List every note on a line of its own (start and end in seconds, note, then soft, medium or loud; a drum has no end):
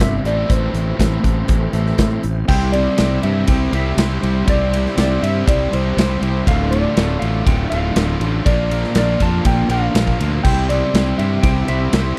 0.00 0.18 G1 medium
0.00 0.23 C3 medium
0.00 0.24 C3 medium
0.00 0.23 G3 medium
0.00 0.24 G3 medium
0.00 0.23 C4 medium
0.00 0.25 C4 medium
0.00 0.26 C4 medium
0.00 0.23 E4 medium
0.00 0.26 E4 medium
0.00 0.23 G4 medium
0.00 0.24 G4 medium
0.00 0.23 C5 medium
0.00 0.27 C5 medium
0.00 0.26 E5 medium
0.00 kick medium
0.00 snare loud
0.00 closed hi-hat loud
0.24 0.42 A1 medium
0.24 2.23 A2 medium
0.24 2.24 E3 medium
0.24 2.24 A3 medium
0.24 2.48 A3 medium
0.24 2.48 C4 medium
0.24 2.24 C4 medium
0.24 2.47 E4 medium
0.24 2.24 E4 medium
0.24 2.24 A4 loud
0.24 2.48 C5 medium
0.24 0.51 D5 medium
0.24 closed hi-hat medium
0.50 0.68 A1 medium
0.50 1.96 C5 medium
0.50 kick loud
0.50 closed hi-hat medium
0.73 0.92 A1 medium
0.73 closed hi-hat medium
0.99 1.17 A1 medium
0.99 1.73 A2 medium
0.99 1.73 E3 medium
0.99 1.74 A3 medium
0.99 1.73 C4 medium
0.99 1.73 E4 medium
0.99 1.72 A4 medium
0.99 kick medium
0.99 snare loud
0.99 closed hi-hat medium
1.24 1.42 A1 medium
1.24 kick medium
1.24 closed hi-hat medium
1.48 1.67 A1 medium
1.48 kick loud
1.48 closed hi-hat medium
1.73 1.92 A1 medium
1.73 2.24 A2 medium
1.73 2.24 E3 medium
1.73 2.23 A3 medium
1.73 2.23 C4 medium
1.73 2.23 E4 medium
1.73 2.22 A4 loud
1.73 closed hi-hat medium
1.86 snare soft
1.98 2.17 A2 medium
1.98 kick medium
1.98 snare loud
1.98 closed hi-hat loud
2.23 2.42 A1 medium
2.23 closed hi-hat medium
2.48 2.87 C2 medium
2.48 3.24 C3 medium
2.48 6.43 G3 medium
2.48 3.24 G3 medium
2.48 6.43 C4 medium
2.48 2.75 C4 medium
2.48 6.43 E4 medium
2.48 2.74 E4 medium
2.48 2.74 G4 medium
2.48 6.43 C5 medium
2.48 2.73 C5 medium
2.48 2.75 G5 loud
2.48 kick loud
2.48 crash loud
2.72 2.98 C3 medium
2.72 3.00 G3 medium
2.72 2.98 C4 medium
2.72 2.99 E4 medium
2.72 3.00 G4 medium
2.72 3.00 C5 medium
2.72 3.20 D5 loud
2.72 ride medium
2.98 3.18 C2 medium
2.98 3.23 C3 loud
2.98 3.24 G3 loud
2.98 3.24 C4 medium
2.98 3.23 E4 medium
2.98 3.23 G4 medium
2.98 3.23 C5 medium
2.98 snare loud
2.98 ride medium
3.23 3.43 G2 medium
3.23 3.74 C3 medium
3.23 3.73 G3 medium
3.23 3.47 C4 medium
3.23 3.47 E4 medium
3.23 3.48 G4 medium
3.23 3.49 C5 loud
3.23 3.48 E5 medium
3.23 ride medium
3.47 3.68 C2 medium
3.47 3.73 C3 medium
3.47 3.73 G3 medium
3.47 3.73 C4 medium
3.47 3.73 E4 medium
3.47 3.72 G4 medium
3.47 3.72 C5 medium
3.47 3.72 G5 loud
3.47 kick loud
3.47 ride loud
3.72 3.92 C2 medium
3.72 4.24 C3 medium
3.72 4.24 G3 medium
3.72 3.96 C4 medium
3.72 3.97 E4 medium
3.72 3.97 G4 medium
3.72 3.98 C5 medium
3.72 4.45 E5 medium
3.72 ride medium
3.96 4.17 C2 medium
3.96 4.45 C3 medium
3.96 4.21 C3 medium
3.96 4.46 G3 loud
3.96 4.21 G3 loud
3.96 4.24 C4 medium
3.96 4.23 E4 medium
3.96 4.22 G4 medium
3.96 4.21 C5 medium
3.96 snare loud
3.96 ride loud
4.22 4.42 C2 medium
4.22 4.46 C3 medium
4.22 4.47 G3 medium
4.22 4.46 C4 medium
4.22 4.47 E4 medium
4.22 4.47 G4 medium
4.22 4.47 C5 medium
4.22 ride medium
4.46 4.86 C2 medium
4.46 4.97 C3 medium
4.46 4.97 G3 medium
4.46 4.72 C4 medium
4.46 4.72 E4 loud
4.46 4.71 G4 loud
4.46 4.70 C5 medium
4.46 4.99 D5 medium
4.46 kick loud
4.46 ride loud
4.71 4.95 C3 medium
4.71 4.97 G3 medium
4.71 4.95 C4 medium
4.71 4.96 E4 medium
4.71 4.96 G4 medium
4.71 4.97 C5 medium
4.71 snare soft
4.71 ride medium
4.86 snare soft
4.96 5.17 C2 loud
4.96 5.21 C3 medium
4.96 5.21 G3 loud
4.96 5.22 C4 medium
4.96 5.22 E4 medium
4.96 5.21 G4 medium
4.96 5.20 C5 medium
4.96 5.25 D5 medium
4.96 snare loud
4.96 ride medium
5.21 5.42 G2 medium
5.21 5.73 C3 medium
5.21 5.72 G3 medium
5.21 5.45 C4 medium
5.21 5.46 E4 medium
5.21 5.47 G4 medium
5.21 5.47 C5 loud
5.21 5.46 E5 medium
5.21 ride medium
5.46 5.67 C2 medium
5.46 5.70 C3 medium
5.46 5.71 G3 medium
5.46 5.72 C4 medium
5.46 5.72 E4 medium
5.46 5.72 G4 medium
5.46 5.71 C5 medium
5.46 5.74 D5 medium
5.46 kick loud
5.46 ride loud
5.72 5.92 C2 medium
5.72 6.23 C3 medium
5.72 6.23 G3 medium
5.72 5.96 C4 medium
5.72 5.96 E4 medium
5.72 5.98 G4 medium
5.72 5.98 C5 medium
5.72 6.19 C5 medium
5.72 ride medium
5.96 6.16 C2 loud
5.96 6.45 C3 medium
5.96 6.20 C3 medium
5.96 6.45 G3 loud
5.96 6.21 G3 loud
5.96 6.22 C4 medium
5.96 6.22 E4 medium
5.96 6.21 G4 medium
5.96 6.20 C5 medium
5.96 snare loud
5.96 ride loud
6.21 6.41 C2 medium
6.21 6.45 C3 medium
6.21 6.46 G3 medium
6.21 6.46 C4 medium
6.21 6.46 E4 medium
6.21 6.46 G4 medium
6.21 6.45 C5 medium
6.21 ride medium
6.45 6.85 D1 loud
6.45 6.96 D2 loud
6.45 6.94 A2 medium
6.45 6.72 D3 medium
6.45 8.43 A3 medium
6.45 6.71 A3 loud
6.45 8.43 D4 medium
6.45 8.43 F4 medium
6.45 6.70 F4 loud
6.45 8.43 D5 medium
6.45 6.73 F5 medium
6.45 kick loud
6.45 ride medium
6.70 6.97 D2 medium
6.70 6.97 A2 medium
6.70 6.96 D3 medium
6.70 6.96 A3 medium
6.70 6.98 F4 medium
6.70 7.23 D5 medium
6.70 ride medium
6.96 7.16 D1 medium
6.96 7.21 D2 medium
6.96 7.22 A2 medium
6.96 7.21 D3 medium
6.96 7.21 A3 medium
6.96 7.21 F4 medium
6.96 snare loud
6.96 ride medium
7.19 7.41 A1 medium
7.19 7.71 D2 medium
7.19 7.44 A2 medium
7.19 7.45 D3 medium
7.19 7.46 A3 loud
7.19 7.47 F4 loud
7.19 7.46 F5 medium
7.19 ride medium
7.46 7.65 D1 medium
7.46 7.71 D2 medium
7.46 7.70 A2 medium
7.46 7.70 D3 medium
7.46 7.70 A3 medium
7.46 7.69 F4 medium
7.46 7.70 G5 medium
7.46 kick loud
7.46 ride medium
7.70 7.90 D1 medium
7.70 8.21 D2 medium
7.70 7.93 A2 medium
7.70 7.94 D3 medium
7.70 7.95 A3 medium
7.70 7.96 F4 medium
7.70 8.24 F5 medium
7.70 ride medium
7.94 8.15 D1 medium
7.94 8.44 D2 medium
7.94 8.21 D2 loud
7.94 8.43 A2 medium
7.94 8.21 D3 medium
7.94 8.20 A3 medium
7.94 8.18 F4 medium
7.94 snare loud
7.94 ride medium
8.20 8.39 A1 medium
8.20 8.45 D2 medium
8.20 8.45 A2 medium
8.20 8.45 D3 medium
8.20 8.44 A3 medium
8.20 8.44 F4 medium
8.20 ride medium
8.24 8.47 E5 medium
8.44 8.84 A#1 loud
8.44 8.95 A#2 medium
8.44 8.95 F3 medium
8.44 8.71 A#3 loud
8.44 10.43 A#3 medium
8.44 8.70 D4 medium
8.44 10.43 D4 medium
8.44 8.69 F4 loud
8.44 10.43 F4 medium
8.44 8.69 A#4 loud
8.44 8.97 D5 medium
8.44 10.43 D5 medium
8.44 kick loud
8.44 ride medium
8.70 8.93 A#2 medium
8.70 8.94 F3 medium
8.70 8.92 A#3 medium
8.70 8.94 D4 medium
8.70 8.94 F4 medium
8.70 8.95 A#4 medium
8.70 ride medium
8.84 snare soft
8.94 9.14 A#1 medium
8.94 9.18 A#2 loud
8.94 9.19 F3 loud
8.94 9.20 A#3 medium
8.94 9.19 D4 medium
8.94 9.19 F4 medium
8.94 9.18 A#4 medium
8.94 snare loud
8.94 ride loud
8.98 9.22 D5 medium
9.19 9.39 F2 medium
9.19 9.70 A#2 medium
9.19 9.70 F3 medium
9.19 9.42 A#3 medium
9.19 9.44 D4 medium
9.19 9.44 F4 medium
9.19 9.45 A#4 medium
9.19 9.46 A5 loud
9.19 kick medium
9.19 ride medium
9.44 9.64 A#1 medium
9.44 9.68 A#2 medium
9.44 9.69 F3 medium
9.44 9.69 A#3 medium
9.44 9.69 D4 medium
9.44 9.68 F4 medium
9.44 9.68 A#4 medium
9.44 9.71 G5 loud
9.44 kick loud
9.44 ride loud
9.69 9.88 A#1 medium
9.69 10.20 A#2 medium
9.69 10.20 F3 medium
9.69 9.92 A#3 medium
9.69 9.93 D4 medium
9.69 9.94 F4 medium
9.69 9.95 A#4 medium
9.69 10.16 F5 medium
9.69 ride medium
9.94 10.13 A#1 medium
9.94 10.42 A#2 medium
9.94 10.18 A#2 medium
9.94 10.43 F3 medium
9.94 10.19 F3 loud
9.94 10.20 A#3 medium
9.94 10.19 D4 medium
9.94 10.19 F4 medium
9.94 10.18 A#4 medium
9.94 snare loud
9.94 ride loud
10.07 kick medium
10.19 10.38 D2 medium
10.19 10.43 A#2 medium
10.19 10.43 F3 medium
10.19 10.43 A#3 medium
10.19 10.43 D4 medium
10.19 10.43 F4 medium
10.19 10.42 A#4 medium
10.19 ride medium
10.44 10.82 C2 medium
10.44 11.20 C3 medium
10.44 11.20 G3 medium
10.44 12.19 C4 medium
10.44 10.70 C4 loud
10.44 12.19 E4 medium
10.44 10.70 E4 loud
10.44 12.19 G4 medium
10.44 10.69 G4 medium
10.44 10.69 C5 medium
10.44 12.19 E5 medium
10.44 10.67 G5 loud
10.44 kick loud
10.44 crash medium
10.69 10.93 C3 medium
10.69 10.94 G3 medium
10.69 10.93 C4 medium
10.69 10.94 E4 medium
10.69 10.95 G4 medium
10.69 10.96 C5 medium
10.69 11.15 D5 loud
10.69 snare soft
10.69 ride medium
10.94 11.12 C2 medium
10.94 11.18 C3 medium
10.94 11.19 G3 loud
10.94 11.19 C4 medium
10.94 11.19 E4 medium
10.94 11.18 G4 medium
10.94 11.18 C5 medium
10.94 snare loud
10.94 ride medium
11.18 11.37 G2 medium
11.18 11.69 C3 medium
11.18 11.68 G3 medium
11.18 11.42 C4 medium
11.18 11.43 E4 medium
11.18 11.44 G4 medium
11.18 11.44 C5 medium
11.18 11.41 E5 medium
11.18 ride medium
11.42 11.62 C2 medium
11.42 11.68 C3 medium
11.42 11.69 G3 medium
11.42 11.68 C4 medium
11.42 11.68 E4 medium
11.42 11.67 G4 medium
11.42 11.67 C5 medium
11.42 11.68 G5 loud
11.42 kick loud
11.42 ride medium
11.68 11.87 C2 medium
11.68 12.18 C3 medium
11.68 12.18 G3 medium
11.68 11.91 C4 medium
11.68 11.92 E4 medium
11.68 11.92 G4 medium
11.68 11.93 C5 medium
11.68 12.19 E5 medium
11.68 ride medium
11.92 12.12 C2 medium
11.92 12.19 C3 medium
11.92 12.18 C3 medium
11.92 12.19 G3 medium
11.92 12.18 G3 medium
11.92 12.18 C4 medium
11.92 12.17 E4 medium
11.92 12.17 G4 medium
11.92 12.16 C5 medium
11.92 snare loud
11.92 ride loud